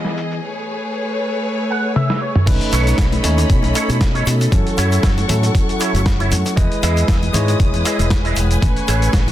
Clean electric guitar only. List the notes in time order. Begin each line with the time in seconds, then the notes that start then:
0.16 muted clean electric guitar stroke
1.70 F#5
1.96 E5
2.21 C#5
2.72 D#4 A4 B4 C#5
3.37 muted clean electric guitar stroke
3.49 muted clean electric guitar stroke
3.74 D#4 A4 B4 C#5
4.14 D#4 A4 B4 C#5
4.40 muted clean electric guitar stroke
4.77 E4 F#4 A4 C#5
5.43 muted clean electric guitar stroke
5.54 muted clean electric guitar stroke
5.80 E4 F#4 A4 C#5
6.20 E4 F#4 A4 C#5
6.45 muted clean electric guitar stroke
6.82 E4 G#4 B4 D#5
7.48 muted clean electric guitar stroke
7.59 muted clean electric guitar stroke
7.85 E4 G#4 B4 D#5
8.24 E4 G#4 B4 D#5
8.50 muted clean electric guitar stroke
8.88 G#4 A4 B4 C#5